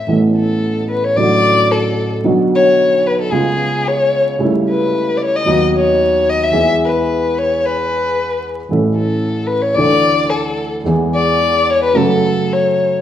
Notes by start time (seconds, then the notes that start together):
Already playing: E5
0.07 A1 A2 E3 A3 B3 A4
0.37 A4
0.91 B4
1.04 C#5
1.16 A1 A2 D3 F#3 A3 F#4 D5
1.72 A4
2.23 B1 B2 D3 F#3 B3
2.27 F#4
2.55 C#5
3.07 B4
3.21 A4
3.30 C#2 C#3 G#3 B3 F4 G#4
3.87 C#5
4.39 C#2 C#3 G3 A3 E4
4.70 B4
5.17 D5
5.22 C#5
5.36 D#5
5.45 D#2 D#3 F#3 B3 F#4
5.77 C#5
6.30 D#5
6.44 E5
6.52 E2 E3 G#3 B3 G#4
6.85 B4
7.38 C#5
7.66 B4
8.69 A1 A2 E3 A3 C#4 A4
8.96 A4
9.47 B4
9.62 C#5
9.74 D2 D3 E3 A3 D5
9.79 D4 A4
10.30 A4
10.84 E2 E3 G#3 B3 G#4
11.15 D5
11.70 C#5
11.84 B4
11.93 F#2 C#3 F#3 A3 F#4 A4
12.53 C#5